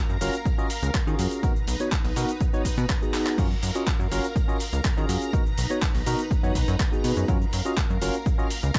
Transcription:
Already playing: string machine A#4 F5 A#5
0.09 analog synth bass F#2, shaker
0.21 analog synth bass F#1, tine electric piano C#4 F4 F#4 A#4, open hi-hat, tambourine, shaker
0.34 closed hi-hat, tambourine, shaker
0.46 kick, closed hi-hat, tambourine, shaker
0.58 tine electric piano C#4 F4 F#4 D#5, shaker
0.70 open hi-hat, tambourine, shaker
0.82 analog synth bass C#2, closed hi-hat, tambourine, shaker
0.94 kick, clap, closed hi-hat, shaker
1.06 analog synth bass D#3, tine electric piano C#4 F4 F#4 G#4, shaker
1.19 analog synth bass F#2, open hi-hat, tambourine, shaker
1.31 closed hi-hat, tambourine, shaker
1.43 tine electric piano B3 D#4 F#4 A#4, string machine D#4 B4 A#5, kick, closed hi-hat, tambourine, shaker
1.56 analog synth bass B1, shaker
1.67 analog synth bass B1, open hi-hat, tambourine, shaker
1.80 tine electric piano B3 D#4 F#4 C#5, closed hi-hat, tambourine, shaker
1.92 kick, clap, shaker
2.04 analog synth bass B1, open hi-hat, shaker
2.16 analog synth bass B2, tine electric piano B3 D#4 F#4 A#4, open hi-hat, tambourine, shaker
2.28 closed hi-hat, tambourine, shaker
2.41 kick, closed hi-hat, tambourine, shaker
2.53 tine electric piano B3 D#4 F#4 C#5, shaker
2.65 kick, open hi-hat, tambourine, shaker
2.78 analog synth bass B2, closed hi-hat, tambourine, shaker
2.89 kick, clap, closed hi-hat, shaker
3.02 tine electric piano B3 D#4 F#4 G#4, shaker
3.14 clap, open hi-hat, tambourine, shaker
3.26 clap, closed hi-hat, tambourine, shaker
3.38 analog synth bass F#2, tine electric piano C#4 F4 F#4 A#4, string machine A#4 F5, kick, closed hi-hat, crash, shaker
3.51 shaker
3.63 analog synth bass F#2, open hi-hat, tambourine, shaker
3.75 tine electric piano C#4 F4 F#4 D#5, closed hi-hat, tambourine, shaker
3.86 kick, clap, tambourine, shaker
3.99 analog synth bass F#2, shaker
4.11 analog synth bass F#1, tine electric piano C#4 F4 F#4 A#4, open hi-hat, tambourine, shaker
4.24 closed hi-hat, tambourine, shaker
4.36 kick, closed hi-hat, shaker
4.48 tine electric piano C#4 F4 F#4 D#5, shaker
4.60 open hi-hat, tambourine, shaker
4.72 analog synth bass C#2, closed hi-hat, tambourine, shaker
4.84 kick, clap, closed hi-hat, tambourine, shaker
4.97 analog synth bass D#3, tine electric piano C#4 F4 F#4 G#4, shaker
5.09 analog synth bass F#2, open hi-hat, tambourine, shaker
5.22 closed hi-hat, tambourine, shaker
5.33 tine electric piano B3 D#4 F#4 A#4, string machine D#4 B4, kick, closed hi-hat, tambourine, shaker
5.46 analog synth bass B1, shaker
5.58 analog synth bass B1, open hi-hat, tambourine, shaker
5.70 tine electric piano B3 D#4 F#4 C#5, closed hi-hat, tambourine, shaker
5.82 kick, clap, shaker
5.95 analog synth bass B1, open hi-hat, shaker
6.06 analog synth bass B2, tine electric piano B3 D#4 F#4 A#4, open hi-hat, tambourine, shaker
6.19 closed hi-hat, tambourine, shaker
6.31 kick, closed hi-hat, shaker
6.43 analog synth bass F#2, tine electric piano B3 D#4 F#4 C#5, shaker
6.55 analog synth bass B1, kick, open hi-hat, tambourine, shaker
6.68 analog synth bass F#2, closed hi-hat, tambourine, shaker
6.80 kick, clap, closed hi-hat, tambourine, shaker
6.92 tine electric piano B3 D#4 F#4 G#4, shaker
7.04 analog synth bass B2, open hi-hat, tambourine, shaker
7.17 analog synth bass F#2, closed hi-hat, tambourine, shaker
7.28 analog synth bass F#2, tine electric piano C#4 F4 F#4 A#4, string machine A#4 F5, kick, closed hi-hat, tambourine, shaker
7.42 shaker
7.53 analog synth bass F#2, open hi-hat, tambourine, shaker
7.65 tine electric piano C#4 F4 F#4 D#5, closed hi-hat, tambourine, shaker
7.77 kick, clap, tambourine, shaker
7.90 analog synth bass F#2, shaker
8.01 analog synth bass F#1, tine electric piano C#4 F4 F#4 A#4, open hi-hat, tambourine, shaker
8.14 closed hi-hat, tambourine, shaker
8.26 kick, closed hi-hat, shaker
8.38 tine electric piano C#4 F4 F#4 D#5, shaker
8.50 open hi-hat, tambourine, shaker
8.63 analog synth bass C#2, closed hi-hat, tambourine, shaker
8.75 kick, clap, closed hi-hat, shaker

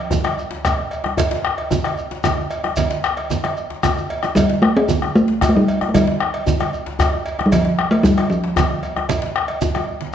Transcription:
Already playing: talking drum F3
0.11 bombo low, djembe bass, low conga, shekere
0.24 bombo rim, cowbell, djembe tone, high conga
0.37 djembe slap, shekere
0.51 djembe slap, high conga
0.65 bombo rim, bombo low, cowbell, high conga, shekere
0.77 djembe slap
0.91 bombo rim, cowbell, shekere
1.04 bombo rim, djembe tone, high conga
1.17 bombo low, cowbell, djembe bass, low conga, shekere
1.31 djembe slap
1.45 bombo rim, high conga
1.58 cowbell, djembe slap
1.71 bombo low, djembe bass, low conga, shekere
1.84 bombo rim, cowbell, djembe tone
1.98 djembe slap, shekere
2.11 djembe slap, high conga
2.24 bombo rim, bombo low, cowbell, high conga, djembe bass, low conga, shekere
2.37 djembe slap
2.51 bombo rim, cowbell, shekere
2.64 bombo rim, djembe tone, high conga
2.76 bombo rim, bombo low, cowbell, djembe slap, djembe bass, low conga, shekere
2.90 djembe slap, high conga, shekere
3.03 bombo rim, djembe slap, shekere
3.17 cowbell, djembe slap, high conga
3.30 bombo rim, djembe slap, djembe bass, low conga, shekere
3.44 bombo rim, cowbell, djembe slap, djembe tone, high conga
3.57 shekere
3.70 bombo rim, djembe slap
3.83 bombo rim, bombo low, cowbell, djembe bass, low conga, shekere
3.96 bombo rim, shekere
4.10 cowbell, high conga
4.23 bombo rim, djembe slap, djembe tone, high conga, shekere
4.35 talking drum G3, bombo low, cowbell, djembe bass, low conga, shekere
4.50 djembe slap
4.62 talking drum A3, bombo rim, high conga
4.76 talking drum C4, cowbell, djembe slap
4.89 bombo low, djembe bass, low conga, shekere
5.02 bombo rim, djembe tone, high conga
5.15 talking drum A3, djembe slap, shekere
5.28 djembe slap, high conga
5.41 bombo rim, bombo low, cowbell, high conga, djembe bass, low conga, shekere
5.49 talking drum A3
5.55 talking drum G3, djembe slap
5.68 bombo rim, cowbell, shekere
5.81 bombo rim, djembe tone, high conga
5.89 talking drum A3
5.94 talking drum G3, bombo low, cowbell, djembe bass, low conga, shekere
6.07 djembe slap
6.20 bombo rim, high conga
6.34 cowbell, djembe slap
6.47 bombo low, djembe bass, low conga, shekere
6.59 bombo rim, cowbell, djembe tone, high conga
6.73 djembe slap, shekere
6.86 djembe slap, high conga
6.99 bombo rim, bombo low, cowbell, high conga, djembe bass, shekere
7.13 djembe slap
7.26 bombo rim, cowbell, shekere
7.39 bombo rim, djembe tone, high conga
7.46 talking drum G3
7.52 talking drum F3, bombo low, cowbell, djembe bass, low conga, shekere
7.65 djembe slap
7.79 bombo rim, high conga
7.91 talking drum A3, cowbell, djembe slap
8.03 talking drum G3, bombo low, djembe bass, low conga, shekere
8.17 bombo rim, cowbell, djembe tone, high conga
8.30 talking drum F3, djembe slap, shekere
8.44 djembe slap, high conga
8.56 bombo rim, bombo low, cowbell, high conga, djembe bass, low conga, shekere
8.69 djembe slap
8.83 bombo rim, cowbell, shekere
8.96 bombo rim, djembe tone, high conga
9.09 bombo rim, bombo low, cowbell, djembe slap, high conga, djembe bass, low conga, shekere
9.22 djembe slap
9.36 bombo rim
9.48 bombo rim, cowbell, high conga
9.61 bombo low, high conga, djembe bass, low conga, shekere
9.75 bombo rim, cowbell, djembe tone, high conga
9.89 high conga
10.01 djembe slap, low conga

